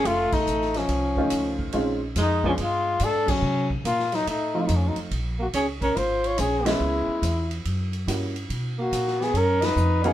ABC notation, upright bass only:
X:1
M:4/4
L:1/8
Q:"Swing" 1/4=142
K:Bbm
V:1 name="Upright bass" clef=bass
F,,, z =A,,,2 C,,2 D,,2 | B,,,2 F,,2 =G,,2 A,,2 | C,2 B,,2 =A,,2 F,, z | B,,,2 D,,2 A,,,2 B,,,2 |
D,, z _F,,2 G,,2 =G,,2 | =B,,2 ^A,,2 ^F,,2 ^E,,2 |]